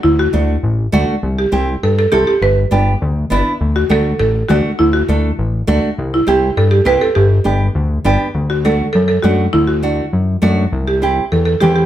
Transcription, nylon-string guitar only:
X:1
M:4/4
L:1/8
Q:1/4=202
K:Dmix
V:1 name="Nylon-string guitar"
z2 [A,DF] z3 [A,DF] z | z2 [CEG] z3 [CEA] z | z2 [B,DG] z3 [B,DE] z | z2 [A,DF] z3 [A,DF] z |
z2 [A,DA] z3 [A,DF] z | z2 [CEG] z3 [CEG] z | z2 [B,DG] z3 [B,DG] z | z2 [A,DF] z3 [A,DF] z |
z2 [A,DF] z3 [A,DF] z | z2 [CEG] z3 [CEG] z |]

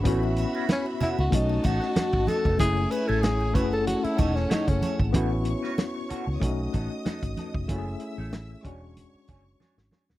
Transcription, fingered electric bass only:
X:1
M:4/4
L:1/16
Q:"Swing 16ths" 1/4=94
K:F#dor
V:1 name="Fingered electric bass" clef=bass
A,,,3 z4 C,, B,,,2 A,,, z2 G,,, z ^E,,, | F,,,2 z A,,,3 F,,,3 z E,,,2 z F,,, z G,,, | A,,,3 z4 C,, B,,,2 A,,, z2 G,,, z ^E,,, | F,,,2 z A,,,3 E,,,3 z F,,,2 z G,,, z D,,, |]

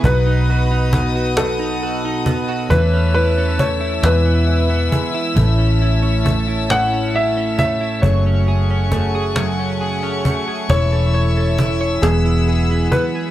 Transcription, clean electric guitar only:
X:1
M:6/8
L:1/16
Q:3/8=45
K:A
V:1 name="Clean electric guitar"
B,, ^D F D B, F2 D F D B, F | E, C E C A, E E, B, E B, G, E | A,, C E C A, E A,, C E C A, E | F, C G C A, G F, C G C A, G |
E, A c A E c E, E G E B, G |]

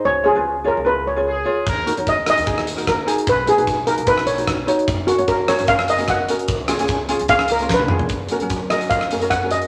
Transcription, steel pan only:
X:1
M:4/4
L:1/8
Q:"Swing 16ths" 1/4=149
K:F#
V:1 name="Steel pan"
c G2 A B c z2 | z2 d d3 A2 | B G2 A B c z2 | z F A c e d f z |
z4 e A B2 | z3 d e2 f d |]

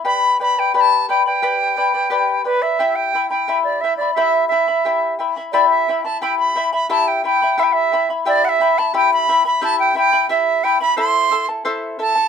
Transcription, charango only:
X:1
M:2/4
L:1/16
Q:1/4=88
K:Em
V:1 name="Charango"
[GBdgb]2 [Bdgb] [Bdb] [GBdgb]2 [Bdgb] [Bdb] | [GBdgb]2 [Bdgb] [Bdb] [GBdgb]2 [Bdgb] [Bdb] | [EGegb]2 [Eegb] [Eeb] [EGegb]2 [Eegb] [Eeb] | [EGegb]2 [Eegb] [Eeb] [EGegb]2 [Eegb] [Eeb] |
[EGegb]2 [Eegb] [Eeb] [EGegb]2 [Eegb] [Eeb] | [EGegb]2 [Eegb] [Eeb] [EGegb]2 [Eegb] [Eeb] | [EGegb]2 [Eegb] [Eeb] [EGegb]2 [Eegb] [Eeb] | [EGegb]2 [Eegb] [Eeb] [EGegb]2 [Eegb] [Eeb] |
[EAcea]2 [EAea] [EAa] [EAcea]2 [EAea] [EAa] |]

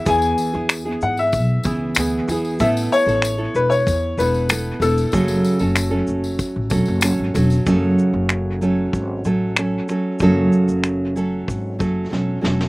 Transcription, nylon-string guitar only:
X:1
M:4/4
L:1/16
Q:1/4=95
K:F#m
V:1 name="Nylon-string guitar"
[E,B,EG]3 [B,EG]2 [B,EG]4- [B,EG] [E,B,EG]2 [E,B,EG]2 [E,B,EG]2 | [A,B,EA]3 [B,EA]2 [B,EA]4- [B,EA] [A,B,EA]2 [A,B,EA]2 [A,B,EA]2 | [F,,C,F,A,CA]3 [F,A,CA]2 [F,A,CA]4- [F,A,CA] [F,A,CA]2 [F,A,CA]2 [F,A,CA]2 | [F,,C,F,A,CA]6 [F,A,CA]4 [F,A,CA]2 [F,A,CA]2 [F,A,CA]2 |
[F,,C,F,A,CA]6 [F,A,CA]4 [F,A,CA]2 [F,A,CA]2 [F,A,CA]2 |]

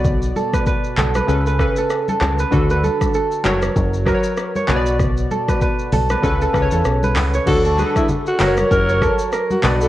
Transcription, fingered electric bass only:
X:1
M:4/4
L:1/16
Q:"Swing 16ths" 1/4=97
K:Bm
V:1 name="Fingered electric bass" clef=bass
B,,,3 z3 B,,,2 C,,3 z3 C,,2 | D,,3 z3 F,,,2 F,,,3 z3 B,,,2- | B,,,3 z3 B,,,2 C,,2 C,, E,, B,,,2 C,,2 | D,,3 z3 F,,,2 F,,,3 z3 B,,,2 |]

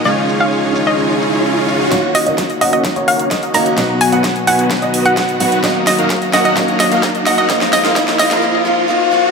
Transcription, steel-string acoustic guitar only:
X:1
M:4/4
L:1/8
Q:1/4=129
K:F#
V:1 name="Steel-string acoustic guitar"
[C,G,CDE]8 | [A,CDF]6- [A,CDF] [A,CDF] | [B,,F,B,DF]6- [B,,F,B,DF] [F,B,DF] | [F,A,DF]4 [F,A,DF]4 |
[E,A,DE]2 [E,A,DE]2 [E,A,DE] [E,A,DE] [E,A,DE] [E,A,DE] |]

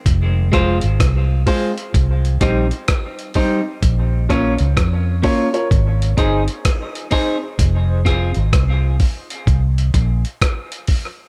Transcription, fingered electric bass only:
X:1
M:4/4
L:1/16
Q:"Swing 16ths" 1/4=64
K:Fm
V:1 name="Fingered electric bass" clef=bass
F,,,3 A,,, C,,2 z2 C,,2 B,,, z4 z | B,,,3 D,, F,,2 z2 A,,,2 G,,, z4 z | F,,,3 A,,, C,,2 z2 C,,2 B,,, z4 z |]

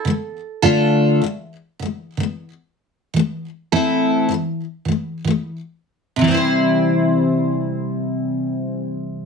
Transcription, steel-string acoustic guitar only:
X:1
M:4/4
L:1/16
Q:1/4=78
K:C
V:1 name="Steel-string acoustic guitar"
[D,A,]2 z [D,A,DFA]3 [D,A,]2 z [D,A,]2 [D,A,]2 z3 | [E,A,]2 z [E,A,CEA]3 [E,A,]2 z [E,A,]2 [E,A,]2 z3 | [C,E,G,CEc]16 |]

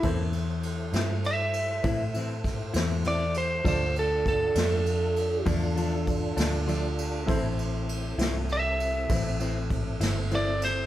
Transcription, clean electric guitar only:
X:1
M:12/8
L:1/8
Q:3/8=66
K:Am
V:1 name="Clean electric guitar"
[A,,E,CE] z2 [E,CE] z2 [A,,E,CE] [E,CE] z [E,CE] [A,,E,CE] z | [D,F,A,D] z2 [F,A,D] z2 [D,F,A,D] [F,A,D] z [F,A,D] [D,F,A,D] z | [A,,E,CE] z2 [E,CE] z2 [A,,E,CE] [E,CE] z [E,CE] [A,,E,CE] z |]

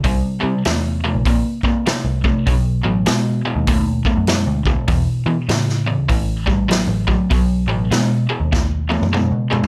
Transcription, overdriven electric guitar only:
X:1
M:4/4
L:1/8
Q:"Swing" 1/4=99
K:Bphr
V:1 name="Overdriven electric guitar" clef=bass
[C,G,] [C,G,] [C,A,] [C,A,] [C,_B,] [C,B,] [C,A,] [C,A,] | [B,,F,] [B,,F,] [B,,^G,] [B,,G,] [B,,A,] [B,,A,] [B,,G,] [B,,G,] | [E,,B,,] [E,,B,,] [E,,^C,] [E,,C,] [A,,E,] [A,,G,] [A,,F,] [A,,F,] | [B,,F,] [B,,F,] [B,,^G,] [B,,G,] [B,,A,] [B,,A,] [B,,G,] [B,,G,] |]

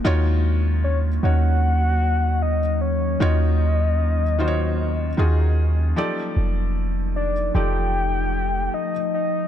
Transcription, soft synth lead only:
X:1
M:4/4
L:1/8
Q:1/4=76
K:Ebm
V:1 name="Soft synth lead"
z2 d g3 e d | e6- e z | z2 =d =g3 e e |]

